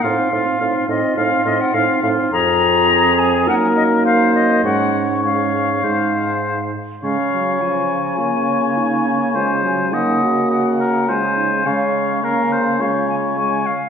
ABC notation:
X:1
M:4/4
L:1/16
Q:1/4=104
K:Fphr
V:1 name="Flute"
f6 e2 f2 e g f2 f2 | [K:Db] b6 a2 g2 e2 f2 e2 | g3 z f8- f2 z2 | f4 a12 |
a4 g4 g4 a4 | f4 f4 f2 a2 a2 f2 |]
V:2 name="Oboe"
F2 F2 F2 F2 F2 F2 F2 F2 | [K:Db] A8 B4 c4 | d4 d4 c6 z2 | d8 d8 |
c4 e4 e2 B2 c4 | d4 B2 c2 d4 d2 z2 |]
V:3 name="Clarinet"
E2 E2 E2 E2 E2 E2 E2 E2 | [K:Db] F8 E8 | D4 D4 E6 z2 | D4 F8 E2 D2 |
F4 E2 G6 F2 E2 | D4 D4 F6 z2 |]
V:4 name="French horn"
C2 C2 C2 C2 C2 C2 C2 C2 | [K:Db] C8 B,8 | A,4 A,4 A,6 z2 | A,2 G,2 F,4 B,8 |
A,2 G,2 B,8 A,4 | A,4 B,4 A,4 A,2 z2 |]
V:5 name="Bassoon" clef=bass
=A,,2 A,,2 A,,2 A,,2 A,,2 A,,2 A,,2 A,,2 | [K:Db] F,,8 G,,8 | A,,8 A,,6 z2 | D,16- |
D,16 | D,12- D,2 z2 |]